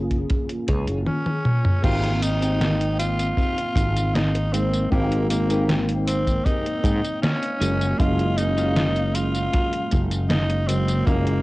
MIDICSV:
0, 0, Header, 1, 7, 480
1, 0, Start_track
1, 0, Tempo, 769231
1, 1149, Time_signature, 4, 2, 24, 8
1, 7128, End_track
2, 0, Start_track
2, 0, Title_t, "Clean electric guitar"
2, 0, Program_c, 0, 27
2, 428, Note_on_c, 0, 68, 94
2, 428, Note_on_c, 0, 73, 127
2, 432, Note_on_c, 0, 65, 94
2, 610, Note_off_c, 0, 65, 0
2, 610, Note_off_c, 0, 68, 0
2, 610, Note_off_c, 0, 73, 0
2, 1144, Note_on_c, 0, 60, 107
2, 1146, Note_on_c, 0, 67, 111
2, 1147, Note_on_c, 0, 70, 118
2, 1149, Note_on_c, 0, 68, 98
2, 1328, Note_off_c, 0, 60, 0
2, 1328, Note_off_c, 0, 67, 0
2, 1328, Note_off_c, 0, 68, 0
2, 1328, Note_off_c, 0, 70, 0
2, 1510, Note_on_c, 0, 68, 88
2, 1512, Note_on_c, 0, 67, 83
2, 1513, Note_on_c, 0, 70, 102
2, 1515, Note_on_c, 0, 60, 76
2, 1689, Note_off_c, 0, 60, 0
2, 1690, Note_off_c, 0, 67, 0
2, 1690, Note_off_c, 0, 68, 0
2, 1691, Note_off_c, 0, 70, 0
2, 2103, Note_on_c, 0, 60, 86
2, 2107, Note_on_c, 0, 67, 78
2, 2110, Note_on_c, 0, 70, 84
2, 2111, Note_on_c, 0, 68, 76
2, 2230, Note_off_c, 0, 60, 0
2, 2230, Note_off_c, 0, 67, 0
2, 2230, Note_off_c, 0, 68, 0
2, 2231, Note_off_c, 0, 70, 0
2, 3069, Note_on_c, 0, 60, 112
2, 3072, Note_on_c, 0, 67, 91
2, 3074, Note_on_c, 0, 70, 121
2, 3077, Note_on_c, 0, 68, 93
2, 3251, Note_off_c, 0, 60, 0
2, 3251, Note_off_c, 0, 67, 0
2, 3251, Note_off_c, 0, 70, 0
2, 3252, Note_off_c, 0, 68, 0
2, 3433, Note_on_c, 0, 68, 81
2, 3436, Note_on_c, 0, 70, 103
2, 3438, Note_on_c, 0, 60, 74
2, 3438, Note_on_c, 0, 67, 82
2, 3611, Note_off_c, 0, 60, 0
2, 3612, Note_off_c, 0, 67, 0
2, 3612, Note_off_c, 0, 68, 0
2, 3612, Note_off_c, 0, 70, 0
2, 4025, Note_on_c, 0, 60, 87
2, 4030, Note_on_c, 0, 67, 74
2, 4033, Note_on_c, 0, 70, 92
2, 4037, Note_on_c, 0, 68, 73
2, 4151, Note_off_c, 0, 60, 0
2, 4151, Note_off_c, 0, 67, 0
2, 4152, Note_off_c, 0, 68, 0
2, 4152, Note_off_c, 0, 70, 0
2, 4269, Note_on_c, 0, 79, 77
2, 4493, Note_off_c, 0, 79, 0
2, 4508, Note_on_c, 0, 77, 76
2, 4731, Note_off_c, 0, 77, 0
2, 4744, Note_on_c, 0, 68, 82
2, 4746, Note_on_c, 0, 75, 76
2, 4748, Note_on_c, 0, 70, 107
2, 4750, Note_on_c, 0, 66, 78
2, 4753, Note_on_c, 0, 65, 85
2, 4971, Note_off_c, 0, 75, 0
2, 5227, Note_off_c, 0, 66, 0
2, 5227, Note_off_c, 0, 70, 0
2, 5228, Note_off_c, 0, 65, 0
2, 5228, Note_off_c, 0, 68, 0
2, 5348, Note_on_c, 0, 68, 78
2, 5351, Note_on_c, 0, 73, 102
2, 5352, Note_on_c, 0, 66, 74
2, 5356, Note_on_c, 0, 65, 81
2, 5529, Note_off_c, 0, 65, 0
2, 5529, Note_off_c, 0, 66, 0
2, 5529, Note_off_c, 0, 73, 0
2, 5530, Note_off_c, 0, 68, 0
2, 5946, Note_on_c, 0, 65, 85
2, 5949, Note_on_c, 0, 66, 79
2, 5951, Note_on_c, 0, 68, 72
2, 5955, Note_on_c, 0, 70, 86
2, 6071, Note_off_c, 0, 65, 0
2, 6071, Note_off_c, 0, 66, 0
2, 6071, Note_off_c, 0, 68, 0
2, 6071, Note_off_c, 0, 70, 0
2, 6905, Note_on_c, 0, 65, 117
2, 6907, Note_on_c, 0, 66, 101
2, 6909, Note_on_c, 0, 68, 101
2, 6914, Note_on_c, 0, 70, 111
2, 7089, Note_off_c, 0, 65, 0
2, 7089, Note_off_c, 0, 66, 0
2, 7089, Note_off_c, 0, 68, 0
2, 7090, Note_off_c, 0, 70, 0
2, 7128, End_track
3, 0, Start_track
3, 0, Title_t, "Tenor saxophone"
3, 0, Program_c, 1, 66
3, 667, Note_on_c, 1, 61, 89
3, 1123, Note_off_c, 1, 61, 0
3, 1148, Note_on_c, 1, 65, 106
3, 1385, Note_on_c, 1, 63, 104
3, 1394, Note_off_c, 1, 65, 0
3, 1862, Note_off_c, 1, 63, 0
3, 1866, Note_on_c, 1, 65, 107
3, 2585, Note_on_c, 1, 63, 97
3, 2594, Note_off_c, 1, 65, 0
3, 2824, Note_on_c, 1, 60, 93
3, 2833, Note_off_c, 1, 63, 0
3, 3064, Note_off_c, 1, 60, 0
3, 3068, Note_on_c, 1, 58, 99
3, 3291, Note_off_c, 1, 58, 0
3, 3307, Note_on_c, 1, 58, 90
3, 3599, Note_off_c, 1, 58, 0
3, 3787, Note_on_c, 1, 60, 93
3, 4025, Note_on_c, 1, 63, 105
3, 4034, Note_off_c, 1, 60, 0
3, 4501, Note_off_c, 1, 63, 0
3, 4505, Note_on_c, 1, 61, 103
3, 4984, Note_on_c, 1, 65, 110
3, 4993, Note_off_c, 1, 61, 0
3, 5224, Note_on_c, 1, 63, 112
3, 5233, Note_off_c, 1, 65, 0
3, 5706, Note_on_c, 1, 65, 115
3, 5716, Note_off_c, 1, 63, 0
3, 6261, Note_off_c, 1, 65, 0
3, 6421, Note_on_c, 1, 63, 105
3, 6661, Note_on_c, 1, 60, 104
3, 6670, Note_off_c, 1, 63, 0
3, 6900, Note_on_c, 1, 58, 109
3, 6910, Note_off_c, 1, 60, 0
3, 7128, Note_off_c, 1, 58, 0
3, 7128, End_track
4, 0, Start_track
4, 0, Title_t, "Tine electric piano"
4, 0, Program_c, 2, 4
4, 0, Control_c, 2, 64, 127
4, 0, Note_on_c, 2, 58, 76
4, 0, Note_on_c, 2, 61, 72
4, 0, Note_on_c, 2, 65, 71
4, 0, Note_on_c, 2, 68, 80
4, 636, Note_off_c, 2, 58, 0
4, 639, Note_off_c, 2, 61, 0
4, 642, Note_off_c, 2, 65, 0
4, 644, Note_off_c, 2, 68, 0
4, 1139, Note_on_c, 2, 58, 97
4, 1142, Note_on_c, 2, 60, 88
4, 1146, Note_on_c, 2, 63, 88
4, 1149, Note_on_c, 2, 79, 103
4, 1158, Control_c, 2, 64, 0
4, 1262, Control_c, 2, 64, 127
4, 1477, Note_off_c, 2, 58, 0
4, 1478, Note_off_c, 2, 60, 0
4, 1481, Note_off_c, 2, 63, 0
4, 1482, Note_off_c, 2, 79, 0
4, 1500, Note_on_c, 2, 58, 75
4, 1506, Note_on_c, 2, 60, 70
4, 1513, Note_on_c, 2, 63, 68
4, 1520, Note_on_c, 2, 79, 83
4, 2555, Note_off_c, 2, 58, 0
4, 2558, Note_off_c, 2, 60, 0
4, 2562, Note_off_c, 2, 63, 0
4, 2565, Note_off_c, 2, 79, 0
4, 2820, Note_on_c, 2, 58, 87
4, 2823, Note_on_c, 2, 60, 78
4, 2826, Note_on_c, 2, 63, 79
4, 2830, Note_on_c, 2, 56, 96
4, 3036, Note_off_c, 2, 58, 0
4, 3038, Note_off_c, 2, 60, 0
4, 3039, Note_off_c, 2, 63, 0
4, 3041, Note_off_c, 2, 56, 0
4, 3062, Note_on_c, 2, 58, 98
4, 3065, Note_on_c, 2, 60, 92
4, 3068, Note_on_c, 2, 63, 91
4, 3071, Note_on_c, 2, 79, 110
4, 3398, Note_off_c, 2, 58, 0
4, 3400, Note_off_c, 2, 60, 0
4, 3401, Note_off_c, 2, 63, 0
4, 3403, Note_off_c, 2, 79, 0
4, 3421, Note_on_c, 2, 58, 75
4, 3427, Note_on_c, 2, 60, 72
4, 3433, Note_on_c, 2, 63, 72
4, 3439, Note_on_c, 2, 79, 85
4, 4475, Note_off_c, 2, 58, 0
4, 4478, Note_off_c, 2, 60, 0
4, 4481, Note_off_c, 2, 63, 0
4, 4484, Note_off_c, 2, 79, 0
4, 4744, Note_on_c, 2, 56, 86
4, 4748, Note_on_c, 2, 58, 78
4, 4751, Note_on_c, 2, 61, 79
4, 4754, Note_on_c, 2, 54, 97
4, 4756, Control_c, 2, 64, 0
4, 4867, Control_c, 2, 64, 127
4, 4958, Note_off_c, 2, 56, 0
4, 4960, Note_off_c, 2, 58, 0
4, 4961, Note_off_c, 2, 61, 0
4, 4963, Note_off_c, 2, 54, 0
4, 4984, Note_on_c, 2, 56, 96
4, 4986, Note_on_c, 2, 58, 86
4, 4989, Note_on_c, 2, 61, 86
4, 4993, Note_on_c, 2, 77, 106
4, 5319, Note_off_c, 2, 56, 0
4, 5320, Note_off_c, 2, 58, 0
4, 5322, Note_off_c, 2, 61, 0
4, 5324, Note_off_c, 2, 77, 0
4, 5340, Note_on_c, 2, 56, 78
4, 5346, Note_on_c, 2, 58, 71
4, 5353, Note_on_c, 2, 61, 74
4, 5360, Note_on_c, 2, 77, 89
4, 6395, Note_off_c, 2, 56, 0
4, 6398, Note_off_c, 2, 58, 0
4, 6401, Note_off_c, 2, 61, 0
4, 6405, Note_off_c, 2, 77, 0
4, 6661, Note_on_c, 2, 56, 84
4, 6663, Note_on_c, 2, 58, 81
4, 6667, Note_on_c, 2, 49, 78
4, 6670, Note_on_c, 2, 54, 95
4, 6877, Note_off_c, 2, 56, 0
4, 6877, Note_off_c, 2, 58, 0
4, 6880, Note_off_c, 2, 49, 0
4, 6881, Note_off_c, 2, 54, 0
4, 6899, Note_on_c, 2, 56, 95
4, 6902, Note_on_c, 2, 58, 89
4, 6905, Note_on_c, 2, 61, 89
4, 6908, Note_on_c, 2, 77, 104
4, 7128, Note_off_c, 2, 56, 0
4, 7128, Note_off_c, 2, 58, 0
4, 7128, Note_off_c, 2, 61, 0
4, 7128, Note_off_c, 2, 77, 0
4, 7128, End_track
5, 0, Start_track
5, 0, Title_t, "Fretless electric bass"
5, 0, Program_c, 3, 35
5, 0, Note_on_c, 3, 30, 95
5, 153, Note_off_c, 3, 30, 0
5, 428, Note_on_c, 3, 37, 106
5, 528, Note_off_c, 3, 37, 0
5, 547, Note_on_c, 3, 30, 98
5, 666, Note_off_c, 3, 30, 0
5, 1146, Note_on_c, 3, 32, 104
5, 2072, Note_off_c, 3, 32, 0
5, 2343, Note_on_c, 3, 32, 98
5, 3030, Note_off_c, 3, 32, 0
5, 3071, Note_on_c, 3, 32, 105
5, 3994, Note_off_c, 3, 32, 0
5, 4267, Note_on_c, 3, 44, 85
5, 4367, Note_off_c, 3, 44, 0
5, 4749, Note_on_c, 3, 30, 100
5, 4945, Note_off_c, 3, 30, 0
5, 4989, Note_on_c, 3, 30, 102
5, 5914, Note_off_c, 3, 30, 0
5, 6195, Note_on_c, 3, 30, 98
5, 6877, Note_off_c, 3, 30, 0
5, 6907, Note_on_c, 3, 30, 104
5, 7128, Note_off_c, 3, 30, 0
5, 7128, End_track
6, 0, Start_track
6, 0, Title_t, "Muted clean electric guitar strokes"
6, 188, Note_on_c, 9, 29, 31
6, 250, Note_off_c, 9, 29, 0
6, 1870, Note_on_c, 9, 29, 33
6, 1932, Note_off_c, 9, 29, 0
6, 2346, Note_on_c, 9, 29, 34
6, 2409, Note_off_c, 9, 29, 0
6, 2712, Note_on_c, 9, 29, 95
6, 2774, Note_off_c, 9, 29, 0
6, 2829, Note_on_c, 9, 29, 33
6, 2892, Note_off_c, 9, 29, 0
6, 3789, Note_on_c, 9, 29, 35
6, 3851, Note_off_c, 9, 29, 0
6, 4271, Note_on_c, 9, 29, 37
6, 4334, Note_off_c, 9, 29, 0
6, 4628, Note_on_c, 9, 29, 91
6, 4691, Note_off_c, 9, 29, 0
6, 5707, Note_on_c, 9, 29, 33
6, 5770, Note_off_c, 9, 29, 0
6, 6186, Note_on_c, 9, 29, 33
6, 6249, Note_off_c, 9, 29, 0
6, 6549, Note_on_c, 9, 29, 93
6, 6611, Note_off_c, 9, 29, 0
6, 6667, Note_on_c, 9, 29, 36
6, 6729, Note_off_c, 9, 29, 0
6, 7128, End_track
7, 0, Start_track
7, 0, Title_t, "Drums"
7, 68, Note_on_c, 9, 36, 60
7, 68, Note_on_c, 9, 42, 40
7, 130, Note_off_c, 9, 42, 0
7, 131, Note_off_c, 9, 36, 0
7, 186, Note_on_c, 9, 42, 65
7, 190, Note_on_c, 9, 36, 108
7, 248, Note_off_c, 9, 42, 0
7, 252, Note_off_c, 9, 36, 0
7, 308, Note_on_c, 9, 42, 38
7, 370, Note_off_c, 9, 42, 0
7, 423, Note_on_c, 9, 42, 92
7, 427, Note_on_c, 9, 36, 95
7, 486, Note_off_c, 9, 42, 0
7, 489, Note_off_c, 9, 36, 0
7, 545, Note_on_c, 9, 42, 40
7, 608, Note_off_c, 9, 42, 0
7, 664, Note_on_c, 9, 48, 61
7, 727, Note_off_c, 9, 48, 0
7, 787, Note_on_c, 9, 48, 65
7, 849, Note_off_c, 9, 48, 0
7, 906, Note_on_c, 9, 47, 87
7, 968, Note_off_c, 9, 47, 0
7, 1029, Note_on_c, 9, 45, 81
7, 1092, Note_off_c, 9, 45, 0
7, 1147, Note_on_c, 9, 36, 119
7, 1148, Note_on_c, 9, 42, 71
7, 1148, Note_on_c, 9, 49, 108
7, 1148, Note_on_c, 9, 54, 30
7, 1209, Note_off_c, 9, 36, 0
7, 1211, Note_off_c, 9, 42, 0
7, 1211, Note_off_c, 9, 49, 0
7, 1211, Note_off_c, 9, 54, 0
7, 1270, Note_on_c, 9, 42, 40
7, 1332, Note_off_c, 9, 42, 0
7, 1388, Note_on_c, 9, 42, 95
7, 1388, Note_on_c, 9, 54, 66
7, 1450, Note_off_c, 9, 42, 0
7, 1450, Note_off_c, 9, 54, 0
7, 1512, Note_on_c, 9, 42, 42
7, 1512, Note_on_c, 9, 54, 38
7, 1574, Note_off_c, 9, 42, 0
7, 1574, Note_off_c, 9, 54, 0
7, 1630, Note_on_c, 9, 38, 115
7, 1630, Note_on_c, 9, 42, 67
7, 1630, Note_on_c, 9, 54, 27
7, 1693, Note_off_c, 9, 38, 0
7, 1693, Note_off_c, 9, 42, 0
7, 1693, Note_off_c, 9, 54, 0
7, 1753, Note_on_c, 9, 42, 42
7, 1816, Note_off_c, 9, 42, 0
7, 1869, Note_on_c, 9, 42, 98
7, 1869, Note_on_c, 9, 54, 69
7, 1931, Note_off_c, 9, 42, 0
7, 1931, Note_off_c, 9, 54, 0
7, 1992, Note_on_c, 9, 42, 42
7, 1992, Note_on_c, 9, 54, 39
7, 2054, Note_off_c, 9, 42, 0
7, 2054, Note_off_c, 9, 54, 0
7, 2104, Note_on_c, 9, 36, 106
7, 2110, Note_on_c, 9, 42, 66
7, 2110, Note_on_c, 9, 54, 27
7, 2166, Note_off_c, 9, 36, 0
7, 2173, Note_off_c, 9, 42, 0
7, 2173, Note_off_c, 9, 54, 0
7, 2233, Note_on_c, 9, 42, 41
7, 2295, Note_off_c, 9, 42, 0
7, 2343, Note_on_c, 9, 36, 106
7, 2350, Note_on_c, 9, 42, 96
7, 2350, Note_on_c, 9, 54, 66
7, 2406, Note_off_c, 9, 36, 0
7, 2413, Note_off_c, 9, 42, 0
7, 2413, Note_off_c, 9, 54, 0
7, 2474, Note_on_c, 9, 42, 42
7, 2474, Note_on_c, 9, 54, 37
7, 2537, Note_off_c, 9, 42, 0
7, 2537, Note_off_c, 9, 54, 0
7, 2592, Note_on_c, 9, 38, 121
7, 2592, Note_on_c, 9, 42, 73
7, 2592, Note_on_c, 9, 54, 28
7, 2654, Note_off_c, 9, 38, 0
7, 2654, Note_off_c, 9, 42, 0
7, 2654, Note_off_c, 9, 54, 0
7, 2715, Note_on_c, 9, 42, 45
7, 2777, Note_off_c, 9, 42, 0
7, 2833, Note_on_c, 9, 42, 95
7, 2833, Note_on_c, 9, 54, 67
7, 2895, Note_off_c, 9, 42, 0
7, 2895, Note_off_c, 9, 54, 0
7, 2955, Note_on_c, 9, 42, 41
7, 2955, Note_on_c, 9, 54, 37
7, 3018, Note_off_c, 9, 42, 0
7, 3018, Note_off_c, 9, 54, 0
7, 3070, Note_on_c, 9, 36, 127
7, 3073, Note_on_c, 9, 42, 71
7, 3073, Note_on_c, 9, 54, 29
7, 3133, Note_off_c, 9, 36, 0
7, 3135, Note_off_c, 9, 42, 0
7, 3135, Note_off_c, 9, 54, 0
7, 3194, Note_on_c, 9, 42, 43
7, 3257, Note_off_c, 9, 42, 0
7, 3310, Note_on_c, 9, 42, 93
7, 3310, Note_on_c, 9, 54, 66
7, 3372, Note_off_c, 9, 42, 0
7, 3372, Note_off_c, 9, 54, 0
7, 3433, Note_on_c, 9, 42, 40
7, 3433, Note_on_c, 9, 54, 38
7, 3496, Note_off_c, 9, 42, 0
7, 3496, Note_off_c, 9, 54, 0
7, 3553, Note_on_c, 9, 38, 122
7, 3553, Note_on_c, 9, 42, 67
7, 3553, Note_on_c, 9, 54, 29
7, 3615, Note_off_c, 9, 38, 0
7, 3615, Note_off_c, 9, 42, 0
7, 3615, Note_off_c, 9, 54, 0
7, 3675, Note_on_c, 9, 42, 44
7, 3737, Note_off_c, 9, 42, 0
7, 3792, Note_on_c, 9, 42, 105
7, 3792, Note_on_c, 9, 54, 70
7, 3854, Note_off_c, 9, 42, 0
7, 3854, Note_off_c, 9, 54, 0
7, 3913, Note_on_c, 9, 36, 65
7, 3915, Note_on_c, 9, 42, 41
7, 3915, Note_on_c, 9, 54, 38
7, 3976, Note_off_c, 9, 36, 0
7, 3978, Note_off_c, 9, 42, 0
7, 3978, Note_off_c, 9, 54, 0
7, 4031, Note_on_c, 9, 36, 111
7, 4033, Note_on_c, 9, 42, 66
7, 4033, Note_on_c, 9, 54, 28
7, 4093, Note_off_c, 9, 36, 0
7, 4095, Note_off_c, 9, 42, 0
7, 4095, Note_off_c, 9, 54, 0
7, 4156, Note_on_c, 9, 42, 41
7, 4219, Note_off_c, 9, 42, 0
7, 4266, Note_on_c, 9, 36, 107
7, 4273, Note_on_c, 9, 42, 95
7, 4273, Note_on_c, 9, 54, 66
7, 4329, Note_off_c, 9, 36, 0
7, 4335, Note_off_c, 9, 42, 0
7, 4335, Note_off_c, 9, 54, 0
7, 4395, Note_on_c, 9, 42, 40
7, 4395, Note_on_c, 9, 54, 37
7, 4458, Note_off_c, 9, 42, 0
7, 4458, Note_off_c, 9, 54, 0
7, 4513, Note_on_c, 9, 38, 123
7, 4513, Note_on_c, 9, 42, 69
7, 4513, Note_on_c, 9, 54, 29
7, 4575, Note_off_c, 9, 38, 0
7, 4575, Note_off_c, 9, 42, 0
7, 4575, Note_off_c, 9, 54, 0
7, 4634, Note_on_c, 9, 42, 46
7, 4696, Note_off_c, 9, 42, 0
7, 4752, Note_on_c, 9, 42, 99
7, 4752, Note_on_c, 9, 54, 67
7, 4814, Note_off_c, 9, 42, 0
7, 4814, Note_off_c, 9, 54, 0
7, 4875, Note_on_c, 9, 42, 41
7, 4875, Note_on_c, 9, 54, 37
7, 4937, Note_off_c, 9, 42, 0
7, 4937, Note_off_c, 9, 54, 0
7, 4990, Note_on_c, 9, 36, 118
7, 4990, Note_on_c, 9, 42, 70
7, 4990, Note_on_c, 9, 54, 27
7, 5052, Note_off_c, 9, 36, 0
7, 5053, Note_off_c, 9, 42, 0
7, 5053, Note_off_c, 9, 54, 0
7, 5112, Note_on_c, 9, 42, 40
7, 5174, Note_off_c, 9, 42, 0
7, 5228, Note_on_c, 9, 42, 96
7, 5228, Note_on_c, 9, 54, 62
7, 5290, Note_off_c, 9, 42, 0
7, 5290, Note_off_c, 9, 54, 0
7, 5353, Note_on_c, 9, 42, 40
7, 5353, Note_on_c, 9, 54, 34
7, 5415, Note_off_c, 9, 42, 0
7, 5415, Note_off_c, 9, 54, 0
7, 5469, Note_on_c, 9, 38, 121
7, 5469, Note_on_c, 9, 42, 69
7, 5469, Note_on_c, 9, 54, 27
7, 5532, Note_off_c, 9, 38, 0
7, 5532, Note_off_c, 9, 42, 0
7, 5532, Note_off_c, 9, 54, 0
7, 5592, Note_on_c, 9, 42, 41
7, 5654, Note_off_c, 9, 42, 0
7, 5709, Note_on_c, 9, 42, 101
7, 5709, Note_on_c, 9, 54, 68
7, 5771, Note_off_c, 9, 42, 0
7, 5771, Note_off_c, 9, 54, 0
7, 5832, Note_on_c, 9, 42, 41
7, 5832, Note_on_c, 9, 54, 35
7, 5894, Note_off_c, 9, 42, 0
7, 5894, Note_off_c, 9, 54, 0
7, 5949, Note_on_c, 9, 42, 67
7, 5949, Note_on_c, 9, 54, 26
7, 5953, Note_on_c, 9, 36, 108
7, 6012, Note_off_c, 9, 42, 0
7, 6012, Note_off_c, 9, 54, 0
7, 6016, Note_off_c, 9, 36, 0
7, 6070, Note_on_c, 9, 42, 39
7, 6133, Note_off_c, 9, 42, 0
7, 6186, Note_on_c, 9, 42, 92
7, 6186, Note_on_c, 9, 54, 61
7, 6194, Note_on_c, 9, 36, 106
7, 6249, Note_off_c, 9, 42, 0
7, 6249, Note_off_c, 9, 54, 0
7, 6256, Note_off_c, 9, 36, 0
7, 6310, Note_on_c, 9, 42, 40
7, 6310, Note_on_c, 9, 54, 36
7, 6373, Note_off_c, 9, 42, 0
7, 6373, Note_off_c, 9, 54, 0
7, 6427, Note_on_c, 9, 38, 127
7, 6427, Note_on_c, 9, 42, 67
7, 6427, Note_on_c, 9, 54, 28
7, 6489, Note_off_c, 9, 38, 0
7, 6489, Note_off_c, 9, 42, 0
7, 6489, Note_off_c, 9, 54, 0
7, 6550, Note_on_c, 9, 42, 43
7, 6612, Note_off_c, 9, 42, 0
7, 6669, Note_on_c, 9, 42, 99
7, 6669, Note_on_c, 9, 54, 65
7, 6731, Note_off_c, 9, 42, 0
7, 6731, Note_off_c, 9, 54, 0
7, 6791, Note_on_c, 9, 42, 41
7, 6791, Note_on_c, 9, 54, 36
7, 6853, Note_off_c, 9, 42, 0
7, 6853, Note_off_c, 9, 54, 0
7, 6908, Note_on_c, 9, 36, 118
7, 6909, Note_on_c, 9, 42, 67
7, 6909, Note_on_c, 9, 54, 27
7, 6970, Note_off_c, 9, 36, 0
7, 6971, Note_off_c, 9, 42, 0
7, 6971, Note_off_c, 9, 54, 0
7, 7031, Note_on_c, 9, 42, 39
7, 7093, Note_off_c, 9, 42, 0
7, 7128, End_track
0, 0, End_of_file